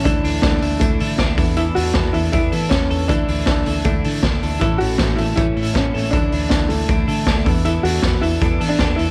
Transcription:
<<
  \new Staff \with { instrumentName = "Synth keys" } { \time 4/4 \key d \lydian \tempo 4 = 158 <a d' e' a'>2.~ <a d' e' a'>8 <b d' e' a'>8~ | <b d' e' a'>2~ <b d' e' a'>8 <a b e' b'>4. | <a d' e' a'>1 | <a cis' e' a'>1 |
<a d' e' a'>2.~ <a d' e' a'>8 <b d' e' a'>8~ | <b d' e' a'>1 | }
  \new Staff \with { instrumentName = "Clean electric guitar" } { \time 4/4 \key d \lydian <e a'>8 d'8 a8 a'8 d'8 a'8 d'8 e8 | <e a'>8 d'8 b8 a'8 d'8 a'4 a'8 | <e a'>8 d'8 a8 a'8 d'8 a'8 d'8 a'8 | <e a'>8 cis'8 a8 a'8 cis'8 a'8 cis'8 a'8 |
<e a'>8 d'8 a8 a'8 d'8 a'8 d'8 e8 | <e a'>8 d'8 b8 a'8 d'8 a'8 d'8 a'8 | }
  \new Staff \with { instrumentName = "Steel-string acoustic guitar" } { \time 4/4 \key d \lydian <d a d' e'>8 <a d' e'>8 <d a d' e'>8 <a d' e'>8 <d a d' e'>8 <a d' e'>8 <d a d' e'>8 <b d' a'>8 | <e b d' a'>8 <b d' a'>8 <e b d' a'>8 <b d' a'>8 <e b d' a'>8 <b d' a'>8 <e b d' a'>8 <b d' a'>8 | <d a d' e'>8 <a d' e'>8 <d a d' e'>8 <a d' e'>8 <d a d' e'>8 <a d' e'>8 <d a d' e'>8 <a d' e'>8 | <a, e a cis' e'>8 <a cis' e'>8 <e a cis' e'>8 <a cis' e'>8 <a, e a cis' e'>8 <a cis' e'>8 <e a cis' e'>8 <a cis' e'>8 |
<d a d' e'>8 <a d' e'>8 <d a d' e'>8 <a d' e'>8 <d a d' e'>8 <a d' e'>8 <d a d' e'>8 <b d' a'>8 | <e b d' a'>8 <b d' a'>8 <e b d' a'>8 <b d' a'>8 <e b d' a'>8 <b d' a'>8 <e b d' a'>8 <b d' a'>8 | }
  \new Staff \with { instrumentName = "Upright piano" } { \time 4/4 \key d \lydian d'4 d'4 a4. r8 | e'8 fis'4 e'8 e'4 cis'4 | d'4 d'4 a4. r8 | e'8 fis'4 e'8 e'4 cis'8 cis'8 |
d'4 d'8 a2 r8 | e'8 fis'4 e'4~ e'16 d'8. e'8 | }
  \new Staff \with { instrumentName = "Fingered electric bass" } { \clef bass \time 4/4 \key d \lydian d,8 d,8 d,8 d,8 d,8 d8 d,8 e,8~ | e,8 e,8 e,8 e,8 e,8 e8 e,8 e,8 | d,8 d,8 d,8 d,8 d,8 d8 d,8 d,8 | a,,8 a,,8 a,,8 a,,8 a,,8 a,8 a,,8 a,,8 |
d,8 d,8 d,8 d,8 d,8 d8 d,8 e,8~ | e,8 e,8 e,8 e,8 e,8 e8 e,8 e,8 | }
  \new DrumStaff \with { instrumentName = "Drums" } \drummode { \time 4/4 <hh bd>8 hho8 <hh bd sn>8 hho8 <hh bd>8 hho8 <hh bd sn>8 <hho bd>8 | hh8 hho8 <hh bd sn>8 hho8 <hh bd>8 hho8 <hh bd sn>8 hho8 | <hh bd>8 hho8 <hh bd sn>8 hho8 <hh bd>8 hho8 <hh bd sn>8 hho8 | <hh bd>8 hho8 <hh bd sn>8 hho8 <hh bd>8 hho8 <hh bd sn>8 hho8 |
<hh bd>8 hho8 <hh bd sn>8 hho8 <hh bd>8 hho8 <hh bd sn>8 <hho bd>8 | hh8 hho8 <hh bd sn>8 hho8 <hh bd>8 hho8 <hh bd sn>8 hho8 | }
>>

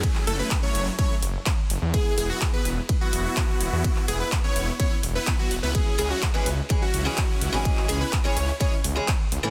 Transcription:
<<
  \new Staff \with { instrumentName = "Digital synth lead" } { \time 4/4 \key e \major \tempo 4 = 126 gis'8 a'16 b'16 r16 cis''8 r16 cis''16 r4. r16 | gis'8 gis'16 fis'16 r16 b'16 r8. fis'4.~ fis'16~ | fis'8 gis'16 b'16 r16 cis''8 r16 cis''16 r8 b'8 fis'16 r16 b'16 | gis'8 gis'16 fis'16 r16 b'16 r8. fis'4.~ fis'16~ |
fis'8 gis'16 b'16 r16 cis''8 r16 cis''16 r4. r16 | }
  \new Staff \with { instrumentName = "Supersaw synth" } { \time 4/4 \key e \major <fis a cis' e' gis'>8 <fis a cis' e' a'>16 <fis a cis' e' b'>16 r16 <fis a cis' e' cis''>8 r16 <fis a cis' e' cis''>16 r4. r16 | <b e' gis'>8 <b e' gis'>16 <b e' fis'>16 r16 <b e' b'>16 r8. <b e' fis'>4.~ <b e' fis'>16~ | <b e' fis'>8 <b e' gis'>16 <b e' b'>16 r16 <b e' cis''>8 r16 <b e' cis''>16 r8 <b e' b'>8 <b e' fis'>16 r16 <b e' b'>16 | <cis' gis'>8 <cis' e' gis'>16 <cis' e' fis'>16 r16 <cis' e' b'>16 r8. <cis' e' fis'>4.~ <cis' e' fis'>16~ |
<cis' e' fis'>8 <cis' e' gis'>16 <cis' e' b'>16 r16 <cis' e' cis''>8 r16 <cis' e' cis''>16 r4. r16 | }
  \new Staff \with { instrumentName = "Steel-string acoustic guitar" } { \time 4/4 \key e \major r1 | r1 | r1 | r8 <e gis cis' gis'>16 r8 <e gis cis' gis'>16 r8 <e gis cis' gis'>16 r8 <e gis cis' gis'>16 r8. <e gis cis' gis'>16~ |
<e gis cis' gis'>8 <e gis cis' gis'>16 r8 <e gis cis' gis'>16 r8 <e gis cis' gis'>16 r8 <e gis cis' gis'>16 r8. <e a cis' a'>16 | }
  \new Staff \with { instrumentName = "Detuned saw bass" } { \clef bass \time 4/4 \key e \major r8 fis,,16 r8. fis,,16 r8. fis,,16 r8. fis,,16 e,16 | r8 e,,16 r8. e,,16 r8. e,,16 r8. e,,16 e,16 | r8 e,,16 r8. e,,16 r8. e,,16 r8. e,,16 cis,16 | r8 cis,16 r8. cis,16 r8. cis,16 r8. cis,16 gis,,16 |
r8 cis,16 r8. cis,16 r8. cis,16 r8. cis,16 a,16 | }
  \new DrumStaff \with { instrumentName = "Drums" } \drummode { \time 4/4 <bd cymr>16 hc16 hho8 <hc bd cymr>8 hho8 <bd cymr>8 hho8 <hc bd cymr>8 hho8 | <bd cymr>8 hho8 <hc bd cymr>8 hho8 <bd cymr>8 hho8 <hc bd cymr>8 hho8 | <bd cymr>16 hc16 hho8 <hc bd cymr>8 hho8 <bd cymr>8 hho8 <hc bd cymr>8 hho8 | <bd cymr>8 hho8 <hc bd cymr>8 hho8 <bd cymr>8 hho8 <hc bd cymr>8 hho8 |
<bd cymr>16 hc16 hho8 <hc bd cymr>8 hho8 <bd cymr>8 hho8 <hc bd cymr>8 hho8 | }
>>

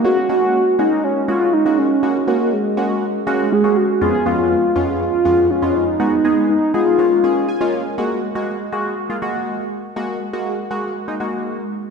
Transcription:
<<
  \new Staff \with { instrumentName = "Soft synth lead" } { \time 4/4 \key fis \major \tempo 4 = 121 fis'8 fis'4 dis'8 cis'8 eis'8 dis'8 cis'8~ | cis'8 ais8 gis2 gis'8 fis'8 | gis'8 eis'4. eis'4 cis'8 dis'8~ | dis'4 dis'8 eis'2 r8 |
r1 | r1 | }
  \new Staff \with { instrumentName = "Synth keys" } { \time 4/4 \key fis \major << { r1 | r1 | r1 | r2. gis''4 |
r1 | r1 | } \\ { <gis ais cis' fis'>16 r16 <gis ais cis' fis'>8 r8 <gis ais cis' fis'>8 r8 <gis ais cis' fis'>8 r16 <gis ais cis' fis'>8 r16 | <gis ais cis' fis'>16 r16 <gis ais cis' fis'>8 r8 <gis ais cis' fis'>8 r8 <gis ais cis' fis'>8 r16 <gis ais cis' fis'>8 r16 | <eis, gis b cis' eis'>16 r16 <eis, gis b cis' eis'>8 r8 <eis, gis b cis' eis'>8 r8 <eis, gis b cis' eis'>8 r16 <eis, gis b cis' eis'>8 r16 | <gis b dis' fis'>16 r16 <gis b dis' gis'>8 r8 <gis b dis' gis'>8 <gis ais cis' eis'>8 <gis ais cis' gis'>8 r16 <gis ais cis' eis'>8 r16 |
<gis ais fis'>8 r16 <gis ais fis'>8 r16 <gis ais fis'>8 r16 <gis ais eis'>16 <gis ais fis'>8. r8. | <gis ais fis'>8 r16 <gis ais fis'>8 r16 <gis ais fis'>8 r16 <gis ais dis'>16 <gis ais fis'>8. r8. | } >> }
>>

